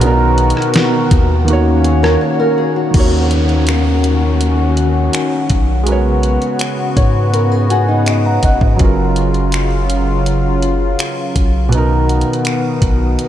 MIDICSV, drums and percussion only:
0, 0, Header, 1, 2, 480
1, 0, Start_track
1, 0, Key_signature, -6, "minor"
1, 0, Tempo, 731707
1, 10, Time_signature, 4, 2, 24, 8
1, 8714, End_track
2, 0, Start_track
2, 0, Title_t, "Drums"
2, 9, Note_on_c, 9, 42, 72
2, 75, Note_off_c, 9, 42, 0
2, 248, Note_on_c, 9, 42, 54
2, 314, Note_off_c, 9, 42, 0
2, 329, Note_on_c, 9, 42, 53
2, 374, Note_on_c, 9, 37, 60
2, 395, Note_off_c, 9, 42, 0
2, 407, Note_on_c, 9, 42, 47
2, 440, Note_off_c, 9, 37, 0
2, 473, Note_off_c, 9, 42, 0
2, 483, Note_on_c, 9, 42, 77
2, 496, Note_on_c, 9, 38, 111
2, 549, Note_off_c, 9, 42, 0
2, 562, Note_off_c, 9, 38, 0
2, 729, Note_on_c, 9, 36, 92
2, 729, Note_on_c, 9, 42, 73
2, 795, Note_off_c, 9, 36, 0
2, 795, Note_off_c, 9, 42, 0
2, 971, Note_on_c, 9, 42, 67
2, 1037, Note_off_c, 9, 42, 0
2, 1210, Note_on_c, 9, 42, 57
2, 1276, Note_off_c, 9, 42, 0
2, 1339, Note_on_c, 9, 37, 102
2, 1404, Note_off_c, 9, 37, 0
2, 1929, Note_on_c, 9, 42, 69
2, 1929, Note_on_c, 9, 49, 82
2, 1930, Note_on_c, 9, 36, 109
2, 1995, Note_off_c, 9, 42, 0
2, 1995, Note_off_c, 9, 49, 0
2, 1996, Note_off_c, 9, 36, 0
2, 2170, Note_on_c, 9, 42, 58
2, 2236, Note_off_c, 9, 42, 0
2, 2290, Note_on_c, 9, 42, 31
2, 2356, Note_off_c, 9, 42, 0
2, 2405, Note_on_c, 9, 42, 70
2, 2418, Note_on_c, 9, 26, 98
2, 2471, Note_off_c, 9, 42, 0
2, 2484, Note_off_c, 9, 26, 0
2, 2650, Note_on_c, 9, 42, 69
2, 2716, Note_off_c, 9, 42, 0
2, 2891, Note_on_c, 9, 42, 68
2, 2956, Note_off_c, 9, 42, 0
2, 3129, Note_on_c, 9, 42, 56
2, 3195, Note_off_c, 9, 42, 0
2, 3367, Note_on_c, 9, 42, 81
2, 3376, Note_on_c, 9, 26, 110
2, 3433, Note_off_c, 9, 42, 0
2, 3441, Note_off_c, 9, 26, 0
2, 3605, Note_on_c, 9, 42, 73
2, 3608, Note_on_c, 9, 36, 88
2, 3671, Note_off_c, 9, 42, 0
2, 3674, Note_off_c, 9, 36, 0
2, 3848, Note_on_c, 9, 42, 72
2, 3914, Note_off_c, 9, 42, 0
2, 4089, Note_on_c, 9, 42, 57
2, 4154, Note_off_c, 9, 42, 0
2, 4210, Note_on_c, 9, 42, 33
2, 4275, Note_off_c, 9, 42, 0
2, 4325, Note_on_c, 9, 42, 73
2, 4338, Note_on_c, 9, 26, 96
2, 4391, Note_off_c, 9, 42, 0
2, 4404, Note_off_c, 9, 26, 0
2, 4570, Note_on_c, 9, 36, 87
2, 4571, Note_on_c, 9, 42, 70
2, 4635, Note_off_c, 9, 36, 0
2, 4636, Note_off_c, 9, 42, 0
2, 4812, Note_on_c, 9, 42, 67
2, 4878, Note_off_c, 9, 42, 0
2, 5053, Note_on_c, 9, 42, 54
2, 5119, Note_off_c, 9, 42, 0
2, 5290, Note_on_c, 9, 42, 77
2, 5298, Note_on_c, 9, 26, 111
2, 5356, Note_off_c, 9, 42, 0
2, 5364, Note_off_c, 9, 26, 0
2, 5528, Note_on_c, 9, 42, 74
2, 5530, Note_on_c, 9, 36, 87
2, 5594, Note_off_c, 9, 42, 0
2, 5595, Note_off_c, 9, 36, 0
2, 5650, Note_on_c, 9, 36, 90
2, 5715, Note_off_c, 9, 36, 0
2, 5769, Note_on_c, 9, 42, 67
2, 5770, Note_on_c, 9, 36, 116
2, 5834, Note_off_c, 9, 42, 0
2, 5836, Note_off_c, 9, 36, 0
2, 6010, Note_on_c, 9, 42, 57
2, 6075, Note_off_c, 9, 42, 0
2, 6130, Note_on_c, 9, 42, 33
2, 6195, Note_off_c, 9, 42, 0
2, 6246, Note_on_c, 9, 42, 74
2, 6259, Note_on_c, 9, 26, 102
2, 6312, Note_off_c, 9, 42, 0
2, 6325, Note_off_c, 9, 26, 0
2, 6492, Note_on_c, 9, 42, 72
2, 6558, Note_off_c, 9, 42, 0
2, 6732, Note_on_c, 9, 42, 62
2, 6798, Note_off_c, 9, 42, 0
2, 6970, Note_on_c, 9, 42, 55
2, 7036, Note_off_c, 9, 42, 0
2, 7209, Note_on_c, 9, 42, 80
2, 7217, Note_on_c, 9, 26, 118
2, 7275, Note_off_c, 9, 42, 0
2, 7283, Note_off_c, 9, 26, 0
2, 7450, Note_on_c, 9, 36, 85
2, 7450, Note_on_c, 9, 42, 70
2, 7515, Note_off_c, 9, 36, 0
2, 7516, Note_off_c, 9, 42, 0
2, 7692, Note_on_c, 9, 42, 73
2, 7757, Note_off_c, 9, 42, 0
2, 7934, Note_on_c, 9, 42, 50
2, 7999, Note_off_c, 9, 42, 0
2, 8012, Note_on_c, 9, 42, 45
2, 8078, Note_off_c, 9, 42, 0
2, 8091, Note_on_c, 9, 42, 43
2, 8157, Note_off_c, 9, 42, 0
2, 8166, Note_on_c, 9, 42, 75
2, 8179, Note_on_c, 9, 26, 101
2, 8232, Note_off_c, 9, 42, 0
2, 8245, Note_off_c, 9, 26, 0
2, 8409, Note_on_c, 9, 36, 87
2, 8409, Note_on_c, 9, 42, 71
2, 8474, Note_off_c, 9, 42, 0
2, 8475, Note_off_c, 9, 36, 0
2, 8651, Note_on_c, 9, 42, 62
2, 8714, Note_off_c, 9, 42, 0
2, 8714, End_track
0, 0, End_of_file